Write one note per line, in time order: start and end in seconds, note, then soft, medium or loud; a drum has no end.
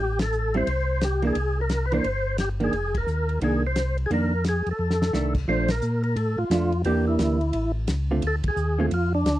0.00 0.63 A1 medium
0.00 0.19 G4 medium
0.19 0.56 A4 medium
0.19 snare medium
0.19 ride medium
0.32 hi-hat pedal soft
0.54 0.66 G3 medium
0.54 0.66 C4 soft
0.54 0.67 E4 medium
0.54 1.04 C5 loud
0.54 ride soft
0.67 1.32 C2 medium
0.67 ride medium
1.01 1.25 G4 medium
1.01 snare medium
1.01 hi-hat pedal soft
1.01 ride soft
1.22 1.34 E3 soft
1.22 1.35 A#3 soft
1.22 1.35 D4 soft
1.22 ride soft
1.27 1.60 G#4 medium
1.35 2.01 C2 medium
1.35 ride medium
1.61 1.86 A#4 medium
1.69 snare medium
1.69 hi-hat pedal soft
1.69 ride medium
1.86 1.93 B4 medium
1.92 2.03 E3 medium
1.92 2.04 A#3 medium
1.92 2.04 D4 medium
1.92 2.37 C5 loud
1.92 ride soft
2.04 2.70 G1 medium
2.04 ride soft
2.38 2.49 G4 medium
2.38 snare medium
2.38 hi-hat pedal soft
2.38 ride medium
2.60 2.72 D#3 medium
2.60 2.72 A#3 soft
2.60 2.73 D4 medium
2.60 2.98 G#4 medium
2.60 ride soft
2.72 3.05 F1 medium
2.72 ride medium
2.95 3.40 A#4 medium
2.95 kick medium
2.95 ride medium
3.07 3.39 D#2 medium
3.07 hi-hat pedal soft
3.29 ride soft
3.41 4.07 C2 medium
3.41 3.62 D#3 medium
3.41 3.62 A#3 soft
3.41 3.62 D4 soft
3.41 3.63 G#4 medium
3.41 ride medium
3.67 3.97 C5 medium
3.76 snare medium
3.76 hi-hat pedal medium
3.76 ride medium
3.98 ride soft
4.06 4.11 G#4 medium
4.10 4.62 F2 medium
4.10 4.30 D#3 medium
4.10 4.31 A#3 medium
4.10 4.31 D4 medium
4.10 4.44 A#4 medium
4.10 ride soft
4.44 snare medium
4.44 hi-hat pedal soft
4.44 ride medium
4.49 4.69 G#4 medium
4.66 4.73 F2 soft
4.66 ride soft
4.71 5.33 A4 medium
4.79 5.11 F2 medium
4.90 snare soft
5.02 snare medium
5.13 5.46 C2 medium
5.13 5.33 D#3 soft
5.13 5.33 A3 soft
5.13 5.34 D4 soft
5.13 snare medium
5.13 hi-hat pedal soft
5.35 kick medium
5.35 crash medium
5.48 5.81 A#1 medium
5.48 5.67 F3 medium
5.48 5.68 A3 medium
5.48 5.68 D4 medium
5.48 5.71 C5 loud
5.68 6.02 A#4 medium
5.68 snare medium
5.68 ride medium
5.81 6.16 A#2 medium
5.81 hi-hat pedal medium
6.03 6.17 A#4 medium
6.03 ride soft
6.16 6.36 A2 medium
6.16 6.39 A4 medium
6.16 ride medium
6.38 6.45 A2 soft
6.38 6.82 F4 medium
6.50 6.84 F2 medium
6.50 6.70 F3 soft
6.50 6.71 A3 soft
6.50 6.71 D4 medium
6.50 snare medium
6.50 hi-hat pedal medium
6.50 ride medium
6.72 ride soft
6.84 7.18 E2 medium
6.84 7.37 E3 medium
6.84 7.38 A#3 medium
6.84 7.37 D4 medium
6.84 7.06 G4 medium
6.84 7.38 G4 medium
6.84 ride medium
7.07 7.72 E4 medium
7.19 7.53 D2 medium
7.19 snare medium
7.19 hi-hat pedal soft
7.19 ride medium
7.41 ride soft
7.53 7.87 A1 medium
7.53 ride medium
7.87 8.21 C#2 medium
7.87 snare medium
7.87 hi-hat pedal medium
7.87 ride medium
8.11 8.22 D3 soft
8.11 8.22 A3 medium
8.11 8.22 C4 medium
8.11 8.22 F4 medium
8.22 8.43 D2 medium
8.22 ride medium
8.27 8.36 A4 loud
8.44 8.50 D2 soft
8.44 kick medium
8.44 ride medium
8.48 8.80 G#4 loud
8.56 8.90 D#2 medium
8.56 hi-hat pedal medium
8.79 8.90 D3 medium
8.79 8.91 A3 medium
8.79 8.91 C4 medium
8.79 8.91 F4 medium
8.79 8.86 G#4 medium
8.91 9.25 F2 medium
8.91 9.13 F4 medium
8.91 ride medium
9.15 9.39 D4 medium
9.25 9.39 D2 medium
9.25 snare medium
9.25 hi-hat pedal medium
9.25 ride medium